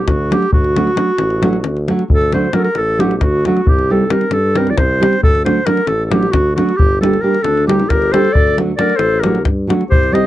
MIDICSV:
0, 0, Header, 1, 6, 480
1, 0, Start_track
1, 0, Tempo, 446761
1, 564, Time_signature, 7, 3, 24, 8
1, 11030, End_track
2, 0, Start_track
2, 0, Title_t, "Clarinet"
2, 0, Program_c, 0, 71
2, 81, Note_on_c, 0, 66, 76
2, 352, Note_on_c, 0, 67, 86
2, 368, Note_off_c, 0, 66, 0
2, 568, Note_off_c, 0, 67, 0
2, 574, Note_on_c, 0, 66, 86
2, 1985, Note_off_c, 0, 66, 0
2, 2278, Note_on_c, 0, 69, 99
2, 2498, Note_off_c, 0, 69, 0
2, 2512, Note_on_c, 0, 72, 69
2, 2731, Note_on_c, 0, 70, 77
2, 2747, Note_off_c, 0, 72, 0
2, 2769, Note_on_c, 0, 69, 62
2, 2785, Note_off_c, 0, 70, 0
2, 2838, Note_on_c, 0, 70, 83
2, 2854, Note_off_c, 0, 69, 0
2, 2971, Note_on_c, 0, 69, 91
2, 2987, Note_off_c, 0, 70, 0
2, 3227, Note_on_c, 0, 67, 76
2, 3243, Note_off_c, 0, 69, 0
2, 3407, Note_off_c, 0, 67, 0
2, 3407, Note_on_c, 0, 67, 58
2, 3463, Note_on_c, 0, 66, 79
2, 3479, Note_off_c, 0, 67, 0
2, 3716, Note_off_c, 0, 66, 0
2, 3722, Note_on_c, 0, 66, 74
2, 3957, Note_on_c, 0, 67, 89
2, 3974, Note_off_c, 0, 66, 0
2, 4208, Note_on_c, 0, 69, 73
2, 4224, Note_off_c, 0, 67, 0
2, 4417, Note_on_c, 0, 70, 75
2, 4434, Note_off_c, 0, 69, 0
2, 4648, Note_on_c, 0, 69, 85
2, 4665, Note_off_c, 0, 70, 0
2, 4904, Note_on_c, 0, 70, 75
2, 4920, Note_off_c, 0, 69, 0
2, 5051, Note_on_c, 0, 74, 67
2, 5067, Note_off_c, 0, 70, 0
2, 5128, Note_on_c, 0, 72, 97
2, 5144, Note_off_c, 0, 74, 0
2, 5616, Note_off_c, 0, 72, 0
2, 5623, Note_on_c, 0, 69, 94
2, 5852, Note_off_c, 0, 69, 0
2, 5856, Note_on_c, 0, 72, 74
2, 6080, Note_on_c, 0, 70, 83
2, 6096, Note_off_c, 0, 72, 0
2, 6309, Note_on_c, 0, 69, 81
2, 6325, Note_off_c, 0, 70, 0
2, 6502, Note_off_c, 0, 69, 0
2, 6502, Note_on_c, 0, 69, 57
2, 6567, Note_on_c, 0, 67, 83
2, 6583, Note_off_c, 0, 69, 0
2, 6778, Note_on_c, 0, 66, 94
2, 6794, Note_off_c, 0, 67, 0
2, 7035, Note_off_c, 0, 66, 0
2, 7042, Note_on_c, 0, 66, 90
2, 7267, Note_on_c, 0, 67, 111
2, 7283, Note_off_c, 0, 66, 0
2, 7521, Note_off_c, 0, 67, 0
2, 7527, Note_on_c, 0, 69, 71
2, 7742, Note_on_c, 0, 70, 86
2, 7759, Note_off_c, 0, 69, 0
2, 7975, Note_on_c, 0, 69, 86
2, 7991, Note_off_c, 0, 70, 0
2, 8236, Note_off_c, 0, 69, 0
2, 8243, Note_on_c, 0, 67, 77
2, 8477, Note_on_c, 0, 70, 83
2, 8493, Note_off_c, 0, 67, 0
2, 8725, Note_on_c, 0, 72, 89
2, 8741, Note_off_c, 0, 70, 0
2, 8951, Note_on_c, 0, 74, 93
2, 8967, Note_off_c, 0, 72, 0
2, 9209, Note_off_c, 0, 74, 0
2, 9420, Note_on_c, 0, 74, 81
2, 9627, Note_on_c, 0, 72, 90
2, 9643, Note_off_c, 0, 74, 0
2, 9886, Note_on_c, 0, 70, 73
2, 9902, Note_off_c, 0, 72, 0
2, 10135, Note_off_c, 0, 70, 0
2, 10640, Note_on_c, 0, 72, 99
2, 10888, Note_on_c, 0, 75, 84
2, 10905, Note_off_c, 0, 72, 0
2, 11030, Note_off_c, 0, 75, 0
2, 11030, End_track
3, 0, Start_track
3, 0, Title_t, "Clarinet"
3, 0, Program_c, 1, 71
3, 7997, Note_on_c, 1, 62, 78
3, 8242, Note_off_c, 1, 62, 0
3, 8249, Note_on_c, 1, 63, 64
3, 8475, Note_on_c, 1, 67, 78
3, 8491, Note_off_c, 1, 63, 0
3, 8736, Note_on_c, 1, 69, 90
3, 8752, Note_off_c, 1, 67, 0
3, 8963, Note_off_c, 1, 69, 0
3, 8963, Note_on_c, 1, 69, 82
3, 9215, Note_off_c, 1, 69, 0
3, 9429, Note_on_c, 1, 70, 77
3, 9639, Note_on_c, 1, 69, 90
3, 9655, Note_off_c, 1, 70, 0
3, 9904, Note_on_c, 1, 67, 65
3, 9920, Note_off_c, 1, 69, 0
3, 10144, Note_off_c, 1, 67, 0
3, 10632, Note_on_c, 1, 67, 69
3, 10878, Note_on_c, 1, 72, 69
3, 10894, Note_off_c, 1, 67, 0
3, 11030, Note_off_c, 1, 72, 0
3, 11030, End_track
4, 0, Start_track
4, 0, Title_t, "Nylon-string guitar"
4, 0, Program_c, 2, 24
4, 328, Note_on_c, 2, 54, 65
4, 335, Note_on_c, 2, 57, 50
4, 342, Note_on_c, 2, 62, 54
4, 347, Note_on_c, 2, 66, 64
4, 472, Note_off_c, 2, 54, 0
4, 476, Note_off_c, 2, 57, 0
4, 479, Note_off_c, 2, 62, 0
4, 481, Note_off_c, 2, 66, 0
4, 812, Note_on_c, 2, 54, 54
4, 820, Note_on_c, 2, 57, 58
4, 827, Note_on_c, 2, 62, 58
4, 832, Note_on_c, 2, 66, 58
4, 951, Note_off_c, 2, 54, 0
4, 955, Note_off_c, 2, 57, 0
4, 958, Note_off_c, 2, 62, 0
4, 961, Note_off_c, 2, 66, 0
4, 1024, Note_on_c, 2, 54, 53
4, 1031, Note_on_c, 2, 57, 45
4, 1039, Note_on_c, 2, 62, 47
4, 1042, Note_on_c, 2, 66, 53
4, 1170, Note_off_c, 2, 54, 0
4, 1174, Note_off_c, 2, 57, 0
4, 1176, Note_off_c, 2, 62, 0
4, 1178, Note_off_c, 2, 66, 0
4, 1522, Note_on_c, 2, 54, 80
4, 1535, Note_on_c, 2, 57, 63
4, 1542, Note_on_c, 2, 62, 62
4, 1547, Note_on_c, 2, 66, 69
4, 1667, Note_off_c, 2, 54, 0
4, 1673, Note_off_c, 2, 57, 0
4, 1676, Note_off_c, 2, 62, 0
4, 1679, Note_off_c, 2, 66, 0
4, 2016, Note_on_c, 2, 54, 71
4, 2027, Note_on_c, 2, 57, 60
4, 2031, Note_on_c, 2, 62, 59
4, 2041, Note_on_c, 2, 66, 69
4, 2161, Note_off_c, 2, 54, 0
4, 2167, Note_off_c, 2, 57, 0
4, 2167, Note_off_c, 2, 62, 0
4, 2173, Note_off_c, 2, 66, 0
4, 2497, Note_on_c, 2, 54, 59
4, 2508, Note_on_c, 2, 57, 61
4, 2516, Note_on_c, 2, 62, 56
4, 2519, Note_on_c, 2, 66, 74
4, 2637, Note_off_c, 2, 54, 0
4, 2644, Note_off_c, 2, 57, 0
4, 2645, Note_off_c, 2, 62, 0
4, 2648, Note_off_c, 2, 66, 0
4, 2722, Note_on_c, 2, 54, 59
4, 2730, Note_on_c, 2, 57, 53
4, 2735, Note_on_c, 2, 62, 53
4, 2741, Note_on_c, 2, 66, 59
4, 2863, Note_off_c, 2, 54, 0
4, 2865, Note_off_c, 2, 57, 0
4, 2869, Note_off_c, 2, 62, 0
4, 2871, Note_off_c, 2, 66, 0
4, 3207, Note_on_c, 2, 54, 66
4, 3214, Note_on_c, 2, 57, 62
4, 3224, Note_on_c, 2, 62, 50
4, 3229, Note_on_c, 2, 66, 70
4, 3352, Note_off_c, 2, 54, 0
4, 3355, Note_off_c, 2, 57, 0
4, 3361, Note_off_c, 2, 62, 0
4, 3363, Note_off_c, 2, 66, 0
4, 3719, Note_on_c, 2, 54, 69
4, 3723, Note_on_c, 2, 57, 52
4, 3724, Note_on_c, 2, 62, 55
4, 3736, Note_on_c, 2, 66, 73
4, 3855, Note_off_c, 2, 54, 0
4, 3856, Note_off_c, 2, 57, 0
4, 3857, Note_off_c, 2, 62, 0
4, 3863, Note_off_c, 2, 66, 0
4, 4184, Note_on_c, 2, 55, 63
4, 4189, Note_on_c, 2, 60, 57
4, 4194, Note_on_c, 2, 63, 62
4, 4200, Note_on_c, 2, 67, 68
4, 4323, Note_off_c, 2, 55, 0
4, 4325, Note_off_c, 2, 60, 0
4, 4328, Note_off_c, 2, 63, 0
4, 4330, Note_off_c, 2, 67, 0
4, 4397, Note_on_c, 2, 55, 45
4, 4404, Note_on_c, 2, 60, 50
4, 4410, Note_on_c, 2, 63, 49
4, 4419, Note_on_c, 2, 67, 64
4, 4541, Note_off_c, 2, 55, 0
4, 4545, Note_off_c, 2, 60, 0
4, 4548, Note_off_c, 2, 63, 0
4, 4552, Note_off_c, 2, 67, 0
4, 4886, Note_on_c, 2, 55, 64
4, 4892, Note_on_c, 2, 60, 65
4, 4899, Note_on_c, 2, 63, 64
4, 4907, Note_on_c, 2, 67, 69
4, 5033, Note_off_c, 2, 55, 0
4, 5035, Note_off_c, 2, 60, 0
4, 5039, Note_off_c, 2, 63, 0
4, 5043, Note_off_c, 2, 67, 0
4, 5378, Note_on_c, 2, 55, 70
4, 5385, Note_on_c, 2, 60, 53
4, 5388, Note_on_c, 2, 63, 60
4, 5392, Note_on_c, 2, 67, 71
4, 5525, Note_off_c, 2, 55, 0
4, 5526, Note_off_c, 2, 60, 0
4, 5529, Note_off_c, 2, 63, 0
4, 5532, Note_off_c, 2, 67, 0
4, 5848, Note_on_c, 2, 54, 64
4, 5853, Note_on_c, 2, 57, 63
4, 5865, Note_on_c, 2, 62, 63
4, 5867, Note_on_c, 2, 66, 72
4, 5995, Note_off_c, 2, 54, 0
4, 5997, Note_off_c, 2, 57, 0
4, 6003, Note_off_c, 2, 66, 0
4, 6004, Note_off_c, 2, 62, 0
4, 6081, Note_on_c, 2, 54, 56
4, 6089, Note_on_c, 2, 57, 42
4, 6091, Note_on_c, 2, 62, 53
4, 6100, Note_on_c, 2, 66, 62
4, 6224, Note_off_c, 2, 54, 0
4, 6225, Note_off_c, 2, 57, 0
4, 6228, Note_off_c, 2, 62, 0
4, 6233, Note_off_c, 2, 66, 0
4, 6562, Note_on_c, 2, 54, 66
4, 6571, Note_on_c, 2, 57, 62
4, 6574, Note_on_c, 2, 62, 59
4, 6580, Note_on_c, 2, 66, 60
4, 6710, Note_off_c, 2, 54, 0
4, 6715, Note_off_c, 2, 57, 0
4, 6716, Note_off_c, 2, 62, 0
4, 6719, Note_off_c, 2, 66, 0
4, 7053, Note_on_c, 2, 54, 61
4, 7063, Note_on_c, 2, 57, 66
4, 7068, Note_on_c, 2, 62, 54
4, 7076, Note_on_c, 2, 66, 66
4, 7201, Note_off_c, 2, 54, 0
4, 7206, Note_off_c, 2, 57, 0
4, 7209, Note_off_c, 2, 62, 0
4, 7211, Note_off_c, 2, 66, 0
4, 7528, Note_on_c, 2, 55, 62
4, 7540, Note_on_c, 2, 58, 58
4, 7546, Note_on_c, 2, 62, 66
4, 7555, Note_on_c, 2, 67, 67
4, 7673, Note_off_c, 2, 55, 0
4, 7679, Note_off_c, 2, 58, 0
4, 7682, Note_off_c, 2, 62, 0
4, 7687, Note_off_c, 2, 67, 0
4, 7761, Note_on_c, 2, 55, 51
4, 7769, Note_on_c, 2, 58, 47
4, 7775, Note_on_c, 2, 62, 48
4, 7777, Note_on_c, 2, 67, 57
4, 7901, Note_off_c, 2, 55, 0
4, 7906, Note_off_c, 2, 58, 0
4, 7907, Note_off_c, 2, 62, 0
4, 7910, Note_off_c, 2, 67, 0
4, 8238, Note_on_c, 2, 55, 59
4, 8244, Note_on_c, 2, 58, 59
4, 8249, Note_on_c, 2, 62, 62
4, 8259, Note_on_c, 2, 67, 62
4, 8387, Note_off_c, 2, 55, 0
4, 8388, Note_off_c, 2, 58, 0
4, 8391, Note_off_c, 2, 62, 0
4, 8396, Note_off_c, 2, 67, 0
4, 8737, Note_on_c, 2, 55, 62
4, 8739, Note_on_c, 2, 58, 63
4, 8745, Note_on_c, 2, 62, 51
4, 8751, Note_on_c, 2, 67, 76
4, 8880, Note_off_c, 2, 58, 0
4, 8881, Note_off_c, 2, 55, 0
4, 8885, Note_off_c, 2, 62, 0
4, 8888, Note_off_c, 2, 67, 0
4, 9211, Note_on_c, 2, 54, 64
4, 9213, Note_on_c, 2, 57, 55
4, 9219, Note_on_c, 2, 62, 62
4, 9224, Note_on_c, 2, 66, 75
4, 9351, Note_off_c, 2, 57, 0
4, 9352, Note_off_c, 2, 54, 0
4, 9356, Note_off_c, 2, 62, 0
4, 9357, Note_off_c, 2, 66, 0
4, 9429, Note_on_c, 2, 54, 44
4, 9437, Note_on_c, 2, 57, 55
4, 9448, Note_on_c, 2, 62, 42
4, 9451, Note_on_c, 2, 66, 48
4, 9572, Note_off_c, 2, 54, 0
4, 9577, Note_off_c, 2, 57, 0
4, 9582, Note_off_c, 2, 62, 0
4, 9583, Note_off_c, 2, 66, 0
4, 9924, Note_on_c, 2, 54, 72
4, 9933, Note_on_c, 2, 57, 52
4, 9938, Note_on_c, 2, 62, 59
4, 9944, Note_on_c, 2, 66, 73
4, 10066, Note_off_c, 2, 54, 0
4, 10070, Note_off_c, 2, 57, 0
4, 10073, Note_off_c, 2, 62, 0
4, 10074, Note_off_c, 2, 66, 0
4, 10393, Note_on_c, 2, 54, 65
4, 10404, Note_on_c, 2, 57, 57
4, 10411, Note_on_c, 2, 62, 57
4, 10414, Note_on_c, 2, 66, 78
4, 10545, Note_off_c, 2, 54, 0
4, 10551, Note_off_c, 2, 57, 0
4, 10554, Note_off_c, 2, 62, 0
4, 10555, Note_off_c, 2, 66, 0
4, 10869, Note_on_c, 2, 55, 69
4, 10877, Note_on_c, 2, 60, 65
4, 10882, Note_on_c, 2, 63, 54
4, 10888, Note_on_c, 2, 67, 65
4, 11017, Note_off_c, 2, 55, 0
4, 11021, Note_off_c, 2, 60, 0
4, 11024, Note_off_c, 2, 63, 0
4, 11027, Note_off_c, 2, 67, 0
4, 11030, End_track
5, 0, Start_track
5, 0, Title_t, "Tuba"
5, 0, Program_c, 3, 58
5, 58, Note_on_c, 3, 38, 87
5, 359, Note_off_c, 3, 38, 0
5, 554, Note_on_c, 3, 38, 76
5, 977, Note_off_c, 3, 38, 0
5, 1264, Note_on_c, 3, 33, 83
5, 1758, Note_on_c, 3, 38, 74
5, 1774, Note_off_c, 3, 33, 0
5, 2055, Note_off_c, 3, 38, 0
5, 2248, Note_on_c, 3, 38, 75
5, 2669, Note_off_c, 3, 38, 0
5, 2953, Note_on_c, 3, 33, 76
5, 3442, Note_on_c, 3, 38, 85
5, 3458, Note_off_c, 3, 33, 0
5, 3739, Note_off_c, 3, 38, 0
5, 3933, Note_on_c, 3, 36, 76
5, 4353, Note_off_c, 3, 36, 0
5, 4624, Note_on_c, 3, 43, 85
5, 5116, Note_on_c, 3, 36, 90
5, 5132, Note_off_c, 3, 43, 0
5, 5415, Note_off_c, 3, 36, 0
5, 5606, Note_on_c, 3, 38, 66
5, 6027, Note_off_c, 3, 38, 0
5, 6301, Note_on_c, 3, 33, 72
5, 6802, Note_on_c, 3, 38, 72
5, 6818, Note_off_c, 3, 33, 0
5, 7098, Note_off_c, 3, 38, 0
5, 7293, Note_on_c, 3, 31, 77
5, 7711, Note_off_c, 3, 31, 0
5, 7989, Note_on_c, 3, 38, 70
5, 8476, Note_on_c, 3, 31, 76
5, 8492, Note_off_c, 3, 38, 0
5, 8772, Note_off_c, 3, 31, 0
5, 8964, Note_on_c, 3, 38, 65
5, 9383, Note_off_c, 3, 38, 0
5, 9656, Note_on_c, 3, 33, 91
5, 10152, Note_on_c, 3, 43, 81
5, 10168, Note_off_c, 3, 33, 0
5, 10447, Note_off_c, 3, 43, 0
5, 10640, Note_on_c, 3, 36, 68
5, 11030, Note_off_c, 3, 36, 0
5, 11030, End_track
6, 0, Start_track
6, 0, Title_t, "Davul"
6, 82, Note_on_c, 9, 37, 69
6, 82, Note_on_c, 9, 43, 64
6, 189, Note_off_c, 9, 37, 0
6, 189, Note_off_c, 9, 43, 0
6, 343, Note_on_c, 9, 37, 64
6, 450, Note_off_c, 9, 37, 0
6, 456, Note_on_c, 9, 37, 21
6, 563, Note_off_c, 9, 37, 0
6, 565, Note_on_c, 9, 43, 96
6, 673, Note_off_c, 9, 43, 0
6, 692, Note_on_c, 9, 37, 21
6, 800, Note_off_c, 9, 37, 0
6, 822, Note_on_c, 9, 37, 62
6, 929, Note_off_c, 9, 37, 0
6, 937, Note_on_c, 9, 37, 20
6, 1044, Note_off_c, 9, 37, 0
6, 1044, Note_on_c, 9, 37, 72
6, 1151, Note_off_c, 9, 37, 0
6, 1273, Note_on_c, 9, 37, 64
6, 1380, Note_off_c, 9, 37, 0
6, 1401, Note_on_c, 9, 37, 22
6, 1508, Note_off_c, 9, 37, 0
6, 1532, Note_on_c, 9, 37, 68
6, 1640, Note_off_c, 9, 37, 0
6, 1643, Note_on_c, 9, 37, 25
6, 1751, Note_off_c, 9, 37, 0
6, 1761, Note_on_c, 9, 37, 62
6, 1869, Note_off_c, 9, 37, 0
6, 1898, Note_on_c, 9, 37, 22
6, 2005, Note_off_c, 9, 37, 0
6, 2023, Note_on_c, 9, 37, 52
6, 2131, Note_off_c, 9, 37, 0
6, 2138, Note_on_c, 9, 37, 25
6, 2246, Note_off_c, 9, 37, 0
6, 2256, Note_on_c, 9, 43, 87
6, 2363, Note_off_c, 9, 43, 0
6, 2379, Note_on_c, 9, 37, 21
6, 2487, Note_off_c, 9, 37, 0
6, 2498, Note_on_c, 9, 37, 54
6, 2606, Note_off_c, 9, 37, 0
6, 2721, Note_on_c, 9, 37, 68
6, 2828, Note_off_c, 9, 37, 0
6, 2843, Note_on_c, 9, 37, 24
6, 2950, Note_off_c, 9, 37, 0
6, 2955, Note_on_c, 9, 37, 50
6, 3063, Note_off_c, 9, 37, 0
6, 3223, Note_on_c, 9, 37, 59
6, 3330, Note_off_c, 9, 37, 0
6, 3342, Note_on_c, 9, 37, 27
6, 3449, Note_off_c, 9, 37, 0
6, 3449, Note_on_c, 9, 37, 62
6, 3449, Note_on_c, 9, 43, 62
6, 3557, Note_off_c, 9, 37, 0
6, 3557, Note_off_c, 9, 43, 0
6, 3709, Note_on_c, 9, 37, 54
6, 3816, Note_off_c, 9, 37, 0
6, 3831, Note_on_c, 9, 37, 28
6, 3938, Note_off_c, 9, 37, 0
6, 3940, Note_on_c, 9, 43, 94
6, 4048, Note_off_c, 9, 43, 0
6, 4067, Note_on_c, 9, 37, 21
6, 4175, Note_off_c, 9, 37, 0
6, 4409, Note_on_c, 9, 37, 72
6, 4516, Note_off_c, 9, 37, 0
6, 4524, Note_on_c, 9, 37, 27
6, 4630, Note_off_c, 9, 37, 0
6, 4630, Note_on_c, 9, 37, 63
6, 4738, Note_off_c, 9, 37, 0
6, 4894, Note_on_c, 9, 37, 64
6, 5001, Note_off_c, 9, 37, 0
6, 5016, Note_on_c, 9, 37, 32
6, 5123, Note_off_c, 9, 37, 0
6, 5130, Note_on_c, 9, 37, 70
6, 5130, Note_on_c, 9, 43, 66
6, 5238, Note_off_c, 9, 37, 0
6, 5238, Note_off_c, 9, 43, 0
6, 5401, Note_on_c, 9, 37, 73
6, 5508, Note_off_c, 9, 37, 0
6, 5510, Note_on_c, 9, 37, 27
6, 5617, Note_off_c, 9, 37, 0
6, 5623, Note_on_c, 9, 43, 99
6, 5731, Note_off_c, 9, 43, 0
6, 5748, Note_on_c, 9, 37, 25
6, 5856, Note_off_c, 9, 37, 0
6, 5869, Note_on_c, 9, 37, 63
6, 5976, Note_off_c, 9, 37, 0
6, 6087, Note_on_c, 9, 37, 78
6, 6195, Note_off_c, 9, 37, 0
6, 6203, Note_on_c, 9, 37, 27
6, 6310, Note_off_c, 9, 37, 0
6, 6310, Note_on_c, 9, 37, 54
6, 6418, Note_off_c, 9, 37, 0
6, 6571, Note_on_c, 9, 37, 79
6, 6678, Note_off_c, 9, 37, 0
6, 6690, Note_on_c, 9, 37, 30
6, 6797, Note_off_c, 9, 37, 0
6, 6806, Note_on_c, 9, 37, 75
6, 6806, Note_on_c, 9, 43, 59
6, 6914, Note_off_c, 9, 37, 0
6, 6914, Note_off_c, 9, 43, 0
6, 7067, Note_on_c, 9, 37, 55
6, 7174, Note_off_c, 9, 37, 0
6, 7185, Note_on_c, 9, 37, 26
6, 7292, Note_off_c, 9, 37, 0
6, 7300, Note_on_c, 9, 43, 99
6, 7408, Note_off_c, 9, 43, 0
6, 7558, Note_on_c, 9, 37, 67
6, 7665, Note_off_c, 9, 37, 0
6, 7666, Note_on_c, 9, 37, 24
6, 7773, Note_off_c, 9, 37, 0
6, 7892, Note_on_c, 9, 37, 27
6, 7998, Note_off_c, 9, 37, 0
6, 7998, Note_on_c, 9, 37, 59
6, 8105, Note_off_c, 9, 37, 0
6, 8137, Note_on_c, 9, 37, 24
6, 8245, Note_off_c, 9, 37, 0
6, 8267, Note_on_c, 9, 37, 75
6, 8374, Note_off_c, 9, 37, 0
6, 8376, Note_on_c, 9, 37, 27
6, 8483, Note_off_c, 9, 37, 0
6, 8490, Note_on_c, 9, 37, 67
6, 8490, Note_on_c, 9, 43, 64
6, 8598, Note_off_c, 9, 37, 0
6, 8598, Note_off_c, 9, 43, 0
6, 8618, Note_on_c, 9, 37, 21
6, 8726, Note_off_c, 9, 37, 0
6, 8743, Note_on_c, 9, 37, 68
6, 8851, Note_off_c, 9, 37, 0
6, 8861, Note_on_c, 9, 37, 22
6, 8968, Note_off_c, 9, 37, 0
6, 8974, Note_on_c, 9, 43, 94
6, 9082, Note_off_c, 9, 43, 0
6, 9104, Note_on_c, 9, 37, 23
6, 9211, Note_off_c, 9, 37, 0
6, 9220, Note_on_c, 9, 37, 56
6, 9328, Note_off_c, 9, 37, 0
6, 9441, Note_on_c, 9, 37, 66
6, 9549, Note_off_c, 9, 37, 0
6, 9557, Note_on_c, 9, 37, 26
6, 9660, Note_off_c, 9, 37, 0
6, 9660, Note_on_c, 9, 37, 63
6, 9768, Note_off_c, 9, 37, 0
6, 9923, Note_on_c, 9, 37, 71
6, 10030, Note_off_c, 9, 37, 0
6, 10043, Note_on_c, 9, 37, 27
6, 10151, Note_off_c, 9, 37, 0
6, 10156, Note_on_c, 9, 37, 64
6, 10156, Note_on_c, 9, 43, 61
6, 10263, Note_off_c, 9, 37, 0
6, 10263, Note_off_c, 9, 43, 0
6, 10424, Note_on_c, 9, 37, 67
6, 10532, Note_off_c, 9, 37, 0
6, 10538, Note_on_c, 9, 37, 23
6, 10646, Note_off_c, 9, 37, 0
6, 10656, Note_on_c, 9, 43, 97
6, 10764, Note_off_c, 9, 43, 0
6, 10780, Note_on_c, 9, 37, 22
6, 10887, Note_off_c, 9, 37, 0
6, 10906, Note_on_c, 9, 37, 55
6, 11013, Note_off_c, 9, 37, 0
6, 11030, End_track
0, 0, End_of_file